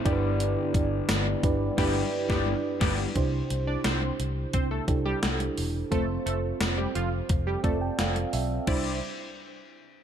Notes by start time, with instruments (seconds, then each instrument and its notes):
0.04 fingered electric bass G1, fm electric piano G2 D4 E4 G4 A#4 D5, overdriven electric guitar D3 G3, analog polysynth B3 G4 D5, kick, closed hi-hat
0.09 overdriven electric guitar G2, fm electric piano B4
0.40 closed hi-hat
0.74 fingered electric bass G1, kick, closed hi-hat
1.09 fingered electric bass G1, snare, closed hi-hat, tambourine
1.43 fingered electric bass G1, fm electric piano D4 E4 G4 B4 D5, kick, closed hi-hat
1.77 fingered electric bass G1, overdriven electric guitar G2 D3 G3, analog polysynth B3 G4 D5, fm electric piano D4 E4 G4 B4 D5, kick, snare, crash
2.28 fingered electric bass G1, overdriven electric guitar G2 D3 G3, analog polysynth B3 G4 D5, kick, snare
2.80 fingered electric bass G1, overdriven electric guitar G2 D3 G3, analog polysynth B3 G4 D5, kick, snare, crash
3.15 fingered electric bass C2, fm electric piano C3 D4 E4 G4 C5, kick, closed hi-hat
3.50 fingered electric bass C2, closed hi-hat
3.67 analog polysynth D4 D5
3.84 fingered electric bass C2, analog polysynth C4 C5, snare, closed hi-hat
4.20 fingered electric bass C2, closed hi-hat
4.53 fingered electric bass C2, analog polysynth C4 C5, kick, closed hi-hat
4.71 analog polysynth A3 A4
4.88 fingered electric bass C2, fm electric piano D4 E4 G4 A4, kick, closed hi-hat
5.05 analog polysynth G3 G4
5.23 fingered electric bass C2, snare, closed hi-hat
5.40 closed hi-hat
5.58 fingered electric bass E1, open hi-hat
5.91 fingered electric bass F1, analog polysynth A3 A4, fm electric piano C4 F4 A4 C5, kick, closed hi-hat
6.26 fingered electric bass F1, analog polysynth A3 A4, closed hi-hat
6.60 fingered electric bass F1, snare, closed hi-hat, tambourine
6.78 analog polysynth G3 G4
6.95 fingered electric bass F1, analog polysynth F3 F4, closed hi-hat
7.29 fingered electric bass F1, kick, closed hi-hat
7.47 analog polysynth G3 G4
7.63 fingered electric bass F1, analog polysynth A3 A4, fm electric piano C4 F4 A4 D5 A5, kick, closed hi-hat
7.81 fm electric piano G5
7.99 fingered electric bass F1, fm electric piano F5, snare, closed hi-hat, tambourine
8.16 closed hi-hat
8.33 fingered electric bass B1, fm electric piano E5, open hi-hat
8.67 fm electric piano C2 D4 E4 G4 C5, fingered electric bass C2, analog polysynth G3 E4 D5, kick, crash